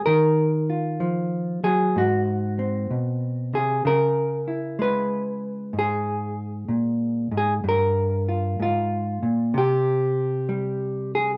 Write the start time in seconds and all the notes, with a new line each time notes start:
0.06 D#3 A#4
0.70 F4
1.00 F3
1.64 F#3 G#4
1.96 G#2 F#4
2.59 C4
2.91 B2
3.54 C3 G#4
3.85 C#3 A#4
4.48 E4
4.79 G#3 B4
5.73 G#2
5.79 G#4
6.68 A#2
7.31 G#2
7.37 G#4
7.64 G2
7.69 A#4
8.29 F4
8.60 G#2 F4
9.23 A#2
9.54 C3 G4
10.49 G3
11.15 G#4